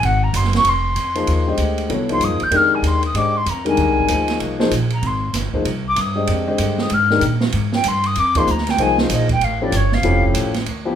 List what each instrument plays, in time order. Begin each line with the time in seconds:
0.03 upright bass G#1, flute F#5, ride
0.23 flute A#5
0.33 upright bass F#1, flute C6, hi-hat pedal, ride
0.44 snare
0.53 flute C#6, snare, ride
0.64 upright bass F1, ride
0.69 flute C6
0.95 upright bass F2, hi-hat pedal, ride
1.15 grand piano F3 A#3 D#4 G#4 C5, ride
1.27 upright bass D#2, ride
1.48 grand piano D3 G#3 G4 C5 D#5
1.57 upright bass D2, hi-hat pedal, ride
1.78 ride
1.89 upright bass C2, grand piano F#3 B3 E4 A4 C#5, ride
2.09 grand piano F3 A#3 D#4 G#4 C5, flute C6, ride
2.20 upright bass G2, flute D#6, hi-hat pedal, ride
2.30 upright bass F2
2.40 upright bass D#2, flute G6, ride
2.51 upright bass F2, grand piano D#3 G#3 D4 G4 A#4, ride
2.56 flute F6
2.75 flute G#5
2.82 upright bass D#2, hi-hat pedal, ride
2.87 flute C6
3.03 flute D#6, ride
3.14 upright bass G#2, grand piano G#3 D4 G4 C5 D#5, flute D6, ride
3.37 flute C6
3.46 upright bass F2, flute A#5, hi-hat pedal, ride
3.65 grand piano D#3 G3 G#3 D4 A#4, flute G#5, ride
3.77 upright bass D#2, ride
3.88 upright bass C2
3.99 upright bass G#1
4.08 upright bass D2, grand piano F3 A#3 D#4 G#4 C5, hi-hat pedal, ride
4.28 snare, ride
4.40 upright bass C2, ride
4.59 grand piano F3 A#3 D#4 G#4 C5, snare
4.71 upright bass A#1, hi-hat pedal, ride
4.90 flute A#5, ride
5.02 upright bass G#1, ride
5.07 flute C6
5.33 upright bass G1, snare, hi-hat pedal, ride
5.53 grand piano F3 A#3 D#4 G#4 C5, muted upright bass stroke, kick
5.65 upright bass C2, ride
5.88 flute D6
5.96 upright bass G2, hi-hat pedal, ride
6.00 flute D#6
6.15 grand piano G#3 D4 G4 C5 D#5
6.27 upright bass F2, ride
6.47 grand piano D3 G#3 G4 C5 D#5
6.58 upright bass G2, hi-hat pedal, ride
6.78 flute D#6, snare
6.90 upright bass G#2, flute F6, ride
7.10 grand piano D#3 G#3 D4 G4 A#4, snare
7.21 upright bass A#2, hi-hat pedal, ride
7.41 snare
7.52 upright bass G#2, ride
7.73 flute G5, snare
7.84 upright bass G2, hi-hat pedal, ride
7.88 flute C6
8.04 flute D#6, ride
8.15 upright bass F2, flute D6, ride
8.35 grand piano F3 A#3 D#4 G#4 C5, flute C6, kick, ride
8.47 upright bass D2, flute A#5, hi-hat pedal
8.58 snare
8.67 flute G5, snare, ride
8.78 upright bass C2, grand piano F3 A#3 D#4 G#4 C5, flute G#5, ride
8.98 flute C5, snare
9.10 upright bass A#1, hi-hat pedal, ride
9.14 flute D#5
9.29 flute G5, kick, ride
9.41 upright bass A1, flute F5, ride
9.61 grand piano F3 A3 C#4 E4 G4, flute D5
9.72 upright bass G1, hi-hat pedal, ride
9.76 flute C#5
9.92 flute F5, snare
10.03 upright bass F1, grand piano F3 A3 C#4 E4 G4, ride
10.23 kick
10.34 upright bass A1, hi-hat pedal, ride
10.54 snare, ride
10.65 upright bass D2, ride
10.85 grand piano F3 B3 E4 G4